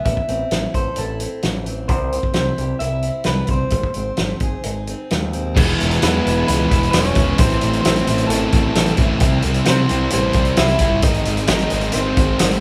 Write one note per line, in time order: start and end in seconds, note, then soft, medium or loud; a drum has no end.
0.00 0.51 E4 medium
0.05 0.20 A1 medium
0.05 1.21 A2 medium
0.05 0.74 E5 medium
0.05 kick loud
0.05 closed hi-hat medium
0.17 kick medium
0.28 0.43 A1 medium
0.28 1.21 C4 medium
0.28 closed hi-hat medium
0.51 0.66 A1 medium
0.51 0.98 E4 medium
0.51 snare medium
0.51 closed hi-hat medium
0.74 0.89 A1 medium
0.74 1.90 A4 medium
0.74 0.99 C5 medium
0.74 kick medium
0.74 closed hi-hat medium
0.96 1.26 A1 medium
0.96 1.91 E4 medium
0.96 1.41 A4 medium
0.96 closed hi-hat medium
1.20 1.67 C4 medium
1.20 closed hi-hat medium
1.43 1.89 A1 medium
1.43 1.90 E3 medium
1.43 snare medium
1.43 closed hi-hat medium
1.66 2.13 C4 medium
1.66 closed hi-hat soft
1.88 2.18 C2 medium
1.88 3.04 C3 medium
1.88 2.33 C5 medium
1.88 kick loud
1.88 closed hi-hat medium
2.12 3.06 C4 medium
2.12 closed hi-hat medium
2.23 kick medium
2.33 2.51 C2 medium
2.33 2.79 C5 medium
2.33 snare loud
2.33 closed hi-hat medium
2.38 2.83 E4 medium
2.58 2.73 C2 medium
2.58 3.75 G4 medium
2.58 closed hi-hat soft
2.79 3.09 C2 medium
2.79 3.23 E5 medium
2.79 closed hi-hat medium
2.84 3.74 E4 medium
3.02 closed hi-hat medium
3.08 3.52 C4 medium
3.24 3.41 C2 medium
3.24 3.50 B4 medium
3.24 snare loud
3.24 closed hi-hat medium
3.29 3.74 G3 medium
3.47 3.63 C2 medium
3.47 5.07 C5 medium
3.47 kick medium
3.47 closed hi-hat medium
3.53 3.75 C4 medium
3.70 3.87 G#1 medium
3.70 4.88 G#2 medium
3.70 kick loud
3.70 closed hi-hat medium
3.83 kick medium
3.94 4.11 G#1 medium
3.94 4.88 C4 medium
3.94 closed hi-hat medium
4.17 4.33 G#1 medium
4.17 4.65 D#4 medium
4.17 snare loud
4.17 closed hi-hat medium
4.40 4.55 G#1 medium
4.40 5.57 G#4 medium
4.40 kick medium
4.40 closed hi-hat medium
4.63 4.93 G#1 medium
4.63 5.57 D#4 medium
4.63 closed hi-hat medium
4.87 5.32 C4 medium
4.87 closed hi-hat medium
5.11 5.58 D#2 medium
5.11 5.57 G#3 medium
5.11 snare medium
5.11 closed hi-hat medium
5.33 5.57 C4 medium
5.33 closed hi-hat medium
5.56 5.73 E1 loud
5.56 6.01 E3 medium
5.56 5.80 G#3 loud
5.56 5.79 B3 loud
5.56 5.78 E4 loud
5.56 kick loud
5.56 crash loud
5.79 5.97 E1 medium
5.79 6.02 G#3 medium
5.79 6.02 B3 medium
5.79 6.04 E4 medium
5.79 closed hi-hat medium
5.91 snare soft
5.91 closed hi-hat medium
6.02 6.20 E2 loud
6.02 6.27 E3 medium
6.02 6.26 G#3 medium
6.02 6.25 B3 medium
6.02 6.46 B3 medium
6.02 6.25 E4 medium
6.02 6.46 B4 medium
6.02 snare loud
6.02 closed hi-hat loud
6.25 6.42 E1 loud
6.25 6.48 E3 medium
6.25 6.48 G#3 medium
6.25 6.49 B3 medium
6.25 6.50 E4 medium
6.25 closed hi-hat medium
6.48 6.65 C#2 loud
6.48 6.72 E3 medium
6.48 6.72 G#3 medium
6.48 6.92 B3 medium
6.48 6.71 B3 medium
6.48 6.70 E4 medium
6.48 6.91 B4 loud
6.48 closed hi-hat loud
6.70 6.88 E1 medium
6.70 6.93 E3 medium
6.70 6.94 G#3 medium
6.70 6.94 B3 medium
6.70 6.95 E4 loud
6.70 kick medium
6.70 closed hi-hat medium
6.83 closed hi-hat medium
6.91 7.11 E1 medium
6.91 7.40 E3 medium
6.91 7.17 G#3 medium
6.91 7.37 C#4 medium
6.91 7.38 C#5 loud
6.91 snare loud
6.91 closed hi-hat loud
6.96 7.17 B3 medium
6.96 7.16 E4 loud
7.04 closed hi-hat medium
7.15 7.33 E1 medium
7.15 7.41 E3 medium
7.15 7.39 G#3 medium
7.15 7.39 B3 medium
7.15 7.41 E4 medium
7.15 kick loud
7.15 closed hi-hat medium
7.38 7.56 A1 loud
7.38 7.85 A2 loud
7.38 7.85 E3 loud
7.38 7.62 A3 loud
7.38 7.83 C4 medium
7.38 7.62 C4 loud
7.38 7.61 E4 loud
7.38 7.80 C5 loud
7.38 kick loud
7.38 closed hi-hat loud
7.50 closed hi-hat soft
7.61 7.79 A1 medium
7.61 7.84 A3 medium
7.61 7.86 C4 medium
7.61 7.86 E4 medium
7.61 closed hi-hat medium
7.73 closed hi-hat medium
7.81 8.30 A2 medium
7.81 8.27 C4 medium
7.81 8.27 C5 medium
7.81 closed hi-hat loud
7.85 8.02 A1 loud
7.85 8.07 A2 medium
7.85 8.10 E3 medium
7.85 8.08 A3 medium
7.85 8.08 C4 medium
7.85 8.08 E4 medium
7.85 snare loud
7.96 closed hi-hat medium
8.07 8.24 A1 loud
8.07 8.54 A2 medium
8.07 8.30 E3 medium
8.07 8.30 A3 medium
8.07 8.33 C4 medium
8.07 8.31 E4 loud
8.07 closed hi-hat medium
8.18 closed hi-hat medium
8.27 8.46 A1 loud
8.27 8.75 A2 loud
8.27 8.95 A3 medium
8.27 8.93 A4 medium
8.27 closed hi-hat loud
8.31 8.53 E3 medium
8.31 8.53 A3 medium
8.31 8.53 C4 medium
8.31 8.51 E4 medium
8.52 8.70 A1 loud
8.52 9.00 A2 medium
8.52 8.73 E3 medium
8.52 8.74 A3 medium
8.52 8.75 C4 loud
8.52 8.76 E4 loud
8.52 kick loud
8.52 closed hi-hat medium
8.74 8.92 A1 medium
8.74 8.99 A2 loud
8.74 9.19 E3 medium
8.74 8.99 A3 medium
8.74 8.99 C4 medium
8.74 8.97 E4 loud
8.74 snare loud
8.74 closed hi-hat loud
8.86 closed hi-hat medium
8.97 9.15 A1 medium
8.97 9.21 A2 medium
8.97 9.21 E3 medium
8.97 9.21 A3 medium
8.97 9.22 C4 medium
8.97 9.20 E4 medium
8.97 kick loud
8.97 closed hi-hat medium
9.03 9.22 E4 loud
9.20 9.38 C2 loud
9.20 9.66 C3 loud
9.20 9.44 G3 loud
9.20 9.44 C4 loud
9.20 9.42 E4 loud
9.20 kick loud
9.20 closed hi-hat loud
9.42 9.61 C2 medium
9.42 9.66 G3 medium
9.42 9.68 C4 medium
9.42 9.68 E4 medium
9.42 closed hi-hat medium
9.54 closed hi-hat medium
9.65 9.91 C3 medium
9.65 9.85 C3 loud
9.65 9.89 G3 medium
9.65 10.08 C4 medium
9.65 9.90 C4 medium
9.65 10.10 C5 medium
9.65 snare loud
9.65 closed hi-hat loud
9.69 9.88 E4 medium
9.89 10.07 C2 loud
9.89 10.12 C3 medium
9.89 10.12 G3 medium
9.89 10.14 C4 medium
9.89 10.14 E4 loud
9.89 closed hi-hat medium
10.10 10.37 C3 medium
10.10 10.36 G3 medium
10.10 10.54 C4 medium
10.10 10.58 C5 medium
10.10 closed hi-hat loud
10.14 10.30 A1 loud
10.14 10.35 C4 medium
10.14 10.35 E4 medium
10.33 10.51 C2 loud
10.33 10.59 G3 medium
10.33 10.60 C4 medium
10.33 10.60 E4 medium
10.33 kick loud
10.33 closed hi-hat medium
10.39 10.58 C3 medium
10.45 closed hi-hat medium
10.57 10.75 C2 loud
10.57 11.03 C3 medium
10.57 10.82 G3 medium
10.57 11.01 E4 medium
10.57 11.01 E5 loud
10.57 snare loud
10.57 closed hi-hat loud
10.61 10.81 C4 medium
10.61 10.80 E4 loud
10.68 closed hi-hat medium
10.79 11.03 G1 medium
10.79 11.02 C3 medium
10.79 11.03 C4 medium
10.79 11.03 E4 medium
10.79 kick medium
10.79 closed hi-hat medium
10.83 11.04 G3 medium
11.02 11.20 G#1 loud
11.02 11.50 G#2 loud
11.02 11.48 D#3 loud
11.02 11.27 G#3 loud
11.02 11.26 C4 loud
11.02 11.46 D#4 medium
11.02 11.25 D#4 loud
11.02 11.46 D#5 loud
11.02 kick loud
11.02 closed hi-hat loud
11.14 closed hi-hat medium
11.25 11.43 G#1 medium
11.25 11.49 G#3 medium
11.25 11.50 C4 medium
11.25 11.50 D#4 medium
11.25 closed hi-hat medium
11.37 closed hi-hat medium
11.47 11.66 G#1 loud
11.47 11.70 G#2 medium
11.47 11.94 G#2 medium
11.47 11.71 D#3 medium
11.47 11.71 G#3 medium
11.47 11.70 C4 medium
11.47 11.92 D#4 medium
11.47 11.94 D#5 medium
11.47 snare loud
11.47 closed hi-hat loud
11.52 11.70 D#4 medium
11.59 closed hi-hat medium
11.70 11.89 G#1 loud
11.70 12.18 G#2 medium
11.70 11.94 D#3 medium
11.70 11.95 G#3 medium
11.70 11.95 C4 medium
11.70 11.95 D#4 medium
11.70 closed hi-hat medium
11.76 11.95 G#3 medium
11.81 closed hi-hat medium
11.92 12.12 G#1 loud
11.92 12.39 G#2 medium
11.92 12.19 D#3 medium
11.92 12.59 C4 medium
11.92 12.59 C5 medium
11.92 closed hi-hat loud
11.96 12.18 G#3 medium
11.96 12.17 C4 medium
11.96 12.17 D#4 medium
12.17 12.34 G#1 medium
12.17 12.60 G#2 medium
12.17 12.39 D#3 medium
12.17 12.40 G#3 medium
12.17 12.41 C4 loud
12.17 12.41 D#4 medium
12.17 kick loud
12.17 closed hi-hat medium
12.39 12.58 G#1 medium
12.39 12.60 G#2 medium
12.39 12.60 D#3 medium
12.39 12.60 G#3 medium
12.39 12.60 C4 medium
12.39 12.60 D#4 medium
12.39 snare loud
12.39 closed hi-hat loud
12.51 closed hi-hat medium